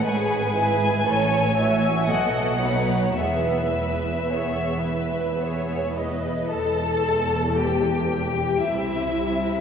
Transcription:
<<
  \new Staff \with { instrumentName = "Violin section" } { \time 3/4 \key e \major \tempo 4 = 56 gis''2 fis''4 | e''2~ e''8 r8 | \key e \minor a''4 g''4 e''4 | }
  \new Staff \with { instrumentName = "Viola section" } { \time 3/4 \key e \major b'4 cis''8 e''8 dis''8 cis''8 | b'4 cis''8 b'8 cis''8 dis''8 | \key e \minor a'4 g'4 e'4 | }
  \new Staff \with { instrumentName = "Violin section" } { \time 3/4 \key e \major <gis' b'>8 <e' gis'>8 <cis' a'>8 <fis' cis''>8 <fis' a'>8 <dis' b'>8 | <b gis'>8 <e' b'>8 <b gis'>8 <e' b'>8 <b gis'>8 <e' b'>8 | \key e \minor a'4 g'4 e'4 | }
  \new Staff \with { instrumentName = "Cello section" } { \clef bass \time 3/4 \key e \major gis,4 a,4 b,4 | e,2. | \key e \minor e,2 c4 | }
  \new Staff \with { instrumentName = "Double bass section" } { \clef bass \time 3/4 \key e \major gis,,4 a,,4 b,,4 | e,,2. | \key e \minor e,,2 c,4 | }
>>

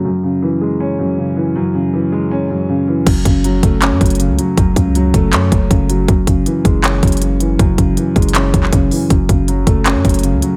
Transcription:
<<
  \new Staff \with { instrumentName = "Grand piano" } { \clef bass \time 4/4 \key fis \minor \tempo 4 = 159 fis,8 cis8 e8 gis8 cis'8 fis,8 cis8 e8 | fis,8 cis8 e8 gis8 cis'8 fis,8 cis8 e8 | fis,8 cis8 fis8 a8 cis'8 fis,8 cis8 fis8 | fis,8 cis8 fis8 a8 cis'8 fis,8 cis8 fis8 |
fis,8 cis8 e8 gis8 cis'8 fis,8 cis8 e8 | fis,8 cis8 e8 gis8 cis'8 fis,8 cis8 e8 | fis,8 cis8 fis8 a8 cis'8 fis,8 cis8 fis8 | }
  \new Staff \with { instrumentName = "808-style bass" } { \clef bass \time 4/4 \key fis \minor r1 | r1 | fis,,8 fis,,4 fis,,8. fis,16 fis,,8. cis,16 r8 | fis,,8 cis,4 fis,,8 fis,8 fis,,8 fis,,4 |
fis,,8 fis,,8 r8 fis,,4 fis,,4. | fis,,8 fis,,8 r8 fis,,4 fis,,8 fis,,8 r8 | fis,,8 fis,,4 fis,,8. fis,16 fis,,8. cis,16 r8 | }
  \new DrumStaff \with { instrumentName = "Drums" } \drummode { \time 4/4 r4 r4 r4 r4 | r4 r4 r4 r4 | <cymc hh bd>8 <hh bd>8 hh8 <hh bd>8 <hc hh>8 <hh bd>32 hh32 hh32 hh32 hh8 hh8 | <hh bd>8 <hh bd>8 hh8 <hh bd>8 <hc hh>8 <hh bd>8 <hh bd>8 hh8 |
<hh bd>8 <hh bd>8 hh8 <hh bd>8 <hc hh>8 <hh bd>32 hh32 hh32 hh32 hh8 hh8 | <hh bd>8 <hh bd>8 \tuplet 3/2 { hh16 r16 r16 <hh bd>16 hh16 hh16 } <hc hh>8 <hh bd>16 hc16 <hh bd>8 hho8 | <hh bd>8 <hh bd>8 hh8 <hh bd>8 <hc hh>8 <hh bd>32 hh32 hh32 hh32 hh8 hh8 | }
>>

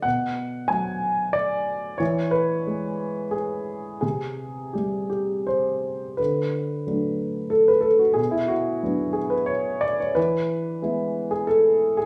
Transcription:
<<
  \new Staff \with { instrumentName = "Grand piano" } { \time 3/4 \key d \lydian \tempo 4 = 91 fis''4 gis''4 d''4 | cis''8 b'4. gis'4 | gis'4 g'8 g'8 c''4 | b'2 a'16 b'16 a'16 fis'16 |
gis'16 e'16 fis'4 gis'16 b'16 cis''8 d''16 cis''16 | b'4.~ b'16 gis'16 a'8. gis'16 | }
  \new Staff \with { instrumentName = "Grand piano" } { \clef bass \time 3/4 \key d \lydian b,4 fis2 | e4 gis2 | c4 g2 | d4 <fis a d'>2 |
b,4 <fis b d'>2 | e4 <gis b e'>2 | }
>>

